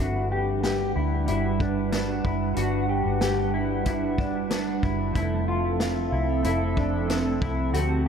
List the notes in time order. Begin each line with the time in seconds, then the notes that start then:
Already playing: G3
0.00 G1 G3 D4 F#4 B4 F#5
0.05 B4
0.32 G4
0.64 G4, snare, closed hi-hat
0.96 D2 E4
1.26 G1 G3 D4 E4, closed hi-hat
1.30 F#4 B4
1.60 D4, kick
1.91 G3 D4 F#4, snare, closed hi-hat
1.97 B4
2.24 F#1 E4, kick
2.54 G1 G3 D4 F#4, closed hi-hat
2.61 F#4 B4
2.89 G4
3.05 G1
3.21 G4, snare, closed hi-hat
3.54 E4
3.85 G3 D4 E4 F#4, kick, closed hi-hat
3.91 B4
4.18 D4, kick
4.49 G3 D4, snare, closed hi-hat
4.53 F#4 B4
4.83 F#1 E4, kick
5.13 F1 F3 A3 C4 E4 A4 E5, kick, closed hi-hat
5.18 C4 E4
5.22 A4
5.48 F4
5.80 F4, snare, closed hi-hat
6.12 C2 E4
6.43 F1 A3 C4 E4, closed hi-hat
6.48 A4
6.77 D4, kick
7.08 A3 C4 D4, snare, closed hi-hat
7.12 E4 A4
7.42 C2 E4, kick
7.73 D2 D3 A3 C4 F#4 G4, closed hi-hat
7.77 A4